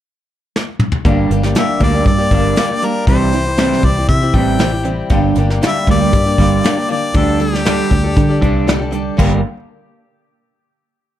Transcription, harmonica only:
1.59 E5
1.83 D5
2.07 D5
2.85 A#4
3.08 C5
3.85 D5
4.09 E5
4.35 G5
5.67 E5
5.91 D5
6.92 D5
7.17 A4
7.41 G4

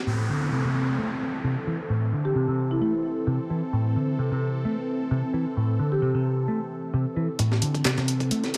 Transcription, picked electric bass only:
0.07 A2
0.29 D3
0.52 C3
0.64 C3
0.98 A3
1.44 C3
1.67 E3
1.90 A2
2.13 D3
2.35 C3
2.48 C3
2.81 A3
3.27 C3
3.50 E3
3.73 A2
3.96 D3
4.19 C3
4.32 C3
4.65 A3
5.11 C3
5.34 E3
5.57 A2
5.79 D3
6.02 C3
6.15 C3
6.48 A3
6.94 C3
7.16 E3
7.39 A2
7.62 D3
7.85 C3
7.98 C3
8.31 A3

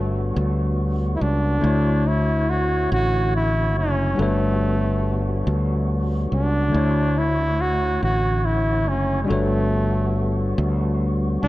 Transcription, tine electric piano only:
Already playing: G3 D4 F#4 A4 B4 C#5
1.59 D3 A3 E4
1.65 F#4 C#5
4.15 G3 D4 F#4
4.19 A4 B4 C#5
6.69 D3 A3
6.73 E4 F#4
6.77 C#5
9.25 G3 D4 F#4
9.30 A4 B4 C#5

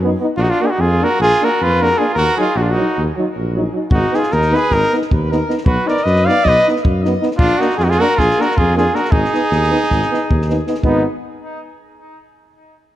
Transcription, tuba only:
Already playing: F#2
0.37 A#1
0.79 F2
1.20 A#1
1.61 F2
2.15 D#2
2.56 A#1
2.97 D#2
3.36 A#1
3.91 G#1
4.32 D#2
4.70 G#1
5.12 D#2
5.66 B1
6.06 F#2
6.45 B1
6.84 F#2
7.39 A#1
7.79 F2
8.18 A#1
8.57 F2
9.12 G#1
9.51 D#2
9.91 G#1
10.30 D#2
10.84 G#1

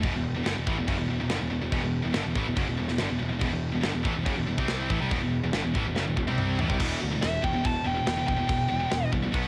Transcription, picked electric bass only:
0.03 E1
0.15 E1
0.36 E1
0.46 G1
0.58 E1
0.68 A1
0.78 E1
0.88 F#1
1.00 E1
1.10 E1
1.21 E1
1.32 G1
1.41 E1
1.52 E1
1.62 E1
1.72 E1
1.83 E1
2.04 E1
2.15 G1
2.26 E1
2.36 A1
2.47 E1
2.57 F#1
2.67 E1
2.79 E1
2.90 E1
3.01 G1
3.10 E1
3.21 E1
3.32 E1
3.41 E1
3.52 E1
3.74 E1
3.84 G1
3.95 E1
4.05 A1
4.17 E1
4.27 F#1
4.37 E1
4.48 E1
4.58 C2
4.90 A1
5.02 C2
5.11 E1
5.22 E1
5.44 E1
5.53 G1
5.64 E1
5.76 A1
5.86 E1
5.97 F#1
6.08 E1
6.17 E1
6.29 C2
6.61 A1
6.70 C2
6.80 E1
7.03 D2
7.23 E1
7.44 E1
7.65 E1
7.86 E1
8.07 E1
8.29 E1
8.49 E1
8.72 E1
8.92 E1
9.13 C2
9.34 B1

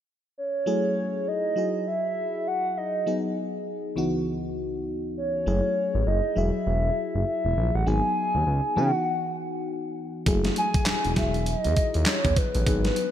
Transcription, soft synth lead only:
0.38 C#5
1.28 D#5
1.88 E5
2.48 F#5
2.77 D#5
5.17 C#5
6.07 D#5
6.37 E5
7.27 E5
7.75 F#5
7.87 G#5
8.77 F#5
10.58 G#5
11.18 E5
11.48 D#5
12.08 C#5
12.38 B4

